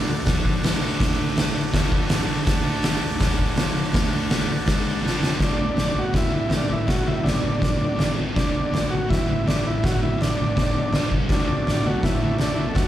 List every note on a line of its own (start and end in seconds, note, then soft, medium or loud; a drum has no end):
0.00 2.41 D4 medium
0.00 2.42 A4 medium
0.00 2.42 F#5 medium
0.08 0.23 D2 medium
0.26 0.62 F2 loud
0.26 0.63 F3 loud
0.26 kick loud
0.26 snare loud
0.26 open hi-hat medium
0.45 kick medium
0.62 0.81 G#2 loud
0.62 0.82 G#3 loud
0.62 snare loud
0.62 open hi-hat medium
0.81 0.97 D2 loud
0.81 0.98 D3 loud
0.98 1.54 D2 loud
0.98 1.55 D3 loud
0.98 kick loud
0.98 snare loud
0.98 open hi-hat medium
1.37 snare loud
1.37 open hi-hat medium
1.56 1.70 D2 medium
1.71 2.09 F2 loud
1.71 2.10 F3 loud
1.71 kick loud
1.71 snare loud
1.71 open hi-hat medium
1.92 kick medium
2.09 2.27 G#2 loud
2.09 2.28 G#3 loud
2.09 snare loud
2.09 open hi-hat medium
2.28 2.45 D2 medium
2.28 2.45 D3 loud
2.46 2.99 D2 loud
2.46 3.01 D3 loud
2.46 5.37 D4 medium
2.46 5.37 F#5 medium
2.46 5.37 A5 medium
2.46 kick loud
2.46 snare loud
2.46 open hi-hat medium
2.83 snare loud
2.83 open hi-hat medium
3.00 3.16 D2 medium
3.18 3.54 G#2 loud
3.18 3.55 G#3 loud
3.18 kick loud
3.18 snare loud
3.18 open hi-hat medium
3.39 kick medium
3.54 3.91 F2 loud
3.54 3.92 F3 loud
3.54 snare loud
3.54 open hi-hat medium
3.92 4.47 D2 medium
3.92 4.48 D3 loud
3.92 kick loud
3.92 snare loud
3.92 open hi-hat medium
4.30 snare loud
4.30 open hi-hat medium
4.49 4.63 D2 medium
4.66 5.02 G#2 loud
4.66 5.03 G#3 loud
4.66 kick loud
4.66 snare loud
4.66 open hi-hat medium
5.02 5.39 F2 loud
5.02 5.40 F3 loud
5.06 snare medium
5.23 snare medium
5.39 5.56 D2 medium
5.39 5.57 A2 medium
5.39 5.58 D3 medium
5.39 kick loud
5.39 snare loud
5.39 floor tom medium
5.44 5.99 D4 medium
5.58 5.74 D2 medium
5.58 5.75 A2 medium
5.58 floor tom medium
5.75 5.93 D2 medium
5.75 5.93 A2 medium
5.75 snare loud
5.75 floor tom medium
5.94 6.12 D2 medium
5.94 6.12 A2 medium
5.94 floor tom medium
5.99 6.15 F#4 medium
6.13 6.29 D2 medium
6.13 6.29 A2 medium
6.13 6.54 E4 medium
6.13 kick loud
6.13 snare loud
6.13 floor tom medium
6.31 6.48 D2 medium
6.31 6.48 A2 medium
6.31 floor tom medium
6.49 6.67 D2 medium
6.49 6.67 A2 medium
6.49 snare loud
6.49 floor tom medium
6.57 6.73 D4 medium
6.68 6.86 D2 medium
6.68 6.86 A2 medium
6.68 floor tom medium
6.73 6.90 E4 medium
6.87 7.04 D2 medium
6.87 7.04 A2 medium
6.87 7.08 F#4 medium
6.87 kick loud
6.87 snare loud
6.87 floor tom medium
7.07 7.22 D2 medium
7.07 7.22 A2 medium
7.07 7.26 E4 medium
7.07 floor tom medium
7.23 7.41 D2 medium
7.23 7.41 A2 medium
7.23 8.12 D4 medium
7.23 floor tom medium
7.27 snare loud
7.42 7.58 D2 medium
7.42 7.58 A2 medium
7.42 floor tom medium
7.59 7.76 D2 medium
7.59 7.76 A2 medium
7.59 kick loud
7.59 floor tom medium
7.63 snare loud
7.77 7.96 D2 medium
7.77 7.96 A2 medium
7.77 floor tom medium
7.96 8.14 G#2 medium
7.96 8.15 D#3 medium
7.96 8.15 G#3 loud
7.96 snare loud
7.96 floor tom medium
8.15 8.32 F2 medium
8.15 8.33 C3 medium
8.15 8.34 F3 loud
8.15 floor tom medium
8.33 8.51 D2 medium
8.33 8.52 A2 medium
8.33 8.52 D3 medium
8.33 8.87 D4 medium
8.33 kick loud
8.33 floor tom medium
8.37 snare loud
8.52 8.70 D2 medium
8.52 8.70 A2 medium
8.52 floor tom medium
8.72 8.88 D2 medium
8.72 8.88 A2 medium
8.72 snare loud
8.72 floor tom medium
8.89 9.05 D2 medium
8.89 9.06 A2 medium
8.89 9.10 F#4 loud
8.93 floor tom medium
9.07 9.25 D2 medium
9.07 9.25 A2 medium
9.07 9.48 E4 medium
9.07 kick loud
9.11 snare medium
9.11 floor tom medium
9.27 9.44 D2 medium
9.27 9.44 A2 medium
9.27 floor tom medium
9.45 9.62 D2 medium
9.45 9.63 A2 medium
9.45 9.66 D4 medium
9.45 snare loud
9.45 floor tom medium
9.64 9.81 D2 medium
9.64 9.81 A2 medium
9.64 9.85 E4 medium
9.64 floor tom medium
9.82 9.99 D2 medium
9.82 9.99 A2 medium
9.82 10.01 F#4 medium
9.82 kick loud
9.82 snare loud
9.82 floor tom medium
10.01 10.17 D2 medium
10.01 10.17 A2 medium
10.01 10.21 E4 medium
10.01 floor tom medium
10.18 10.36 D2 medium
10.18 10.36 A2 medium
10.18 11.09 D4 medium
10.18 snare loud
10.18 floor tom medium
10.37 10.54 D2 medium
10.37 10.54 A2 medium
10.37 floor tom medium
10.55 10.73 D2 medium
10.55 10.73 A2 medium
10.55 kick loud
10.55 snare loud
10.55 floor tom medium
10.74 10.92 D2 medium
10.74 10.92 A2 medium
10.74 floor tom medium
10.93 11.11 G2 medium
10.93 11.11 D3 medium
10.93 11.11 G3 loud
10.93 snare loud
10.93 floor tom medium
11.11 11.29 C3 medium
11.11 11.30 G3 medium
11.11 11.30 C4 medium
11.11 kick medium
11.11 floor tom medium
11.29 11.48 D2 medium
11.29 11.49 A2 medium
11.29 11.49 D3 loud
11.29 11.88 D4 medium
11.29 12.88 D4 medium
11.29 12.88 F#4 medium
11.29 12.88 A4 medium
11.29 kick loud
11.29 snare loud
11.29 floor tom medium
11.49 11.66 D2 medium
11.49 11.66 A2 medium
11.49 floor tom medium
11.67 11.84 D2 medium
11.67 11.84 A2 medium
11.67 snare loud
11.67 floor tom medium
11.84 12.02 D2 medium
11.84 12.02 A2 medium
11.84 12.05 F#4 medium
11.84 floor tom medium
12.03 12.20 D2 medium
12.03 12.21 A2 medium
12.03 12.38 E4 medium
12.03 kick loud
12.03 snare loud
12.03 floor tom medium
12.22 12.38 D2 medium
12.22 12.39 A2 medium
12.22 floor tom medium
12.39 12.56 D2 medium
12.39 12.57 A2 medium
12.39 12.58 D4 medium
12.39 snare loud
12.39 floor tom medium
12.55 12.72 D2 medium
12.55 12.73 A2 medium
12.55 12.69 E4 medium
12.55 floor tom medium
12.69 12.77 A4 medium
12.74 12.88 D2 medium
12.74 12.88 A2 medium
12.74 12.88 F#4 medium
12.74 kick loud
12.74 snare loud
12.74 floor tom medium